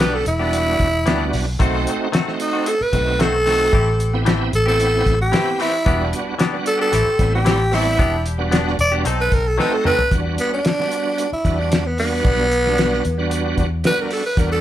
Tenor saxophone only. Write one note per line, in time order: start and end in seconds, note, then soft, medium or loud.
0.01 0.16 B4 medium
0.15 0.26 A4 medium
0.28 1.57 E4 loud
2.42 2.70 D#4 medium
2.68 2.84 A4 medium
2.82 3.23 B4 medium
3.21 4.24 A4 loud
4.55 4.67 A4 loud
4.68 5.19 A4 medium
5.22 5.59 G4 medium
5.62 6.12 E4 loud
6.68 6.80 A4 medium
6.81 7.32 A4 loud
7.35 7.76 G4 medium
7.75 8.25 E4 loud
8.81 8.93 D5 loud
9.21 9.35 B4 medium
9.33 9.49 A#4 medium
9.48 9.59 A4 medium
9.61 9.76 B4 medium
9.74 9.85 A4 medium
9.87 10.12 B4 loud
10.40 10.52 B3 medium
10.54 11.31 D4 medium
11.33 11.61 E4 medium
11.60 11.88 D4 medium
11.86 11.98 B3 medium
12.00 13.54 B3 loud
13.87 13.98 B4 loud
14.01 14.12 A#4 medium
14.13 14.25 A4 medium
14.26 14.37 B4 medium
14.39 14.51 A#4 medium
14.52 14.61 A4 medium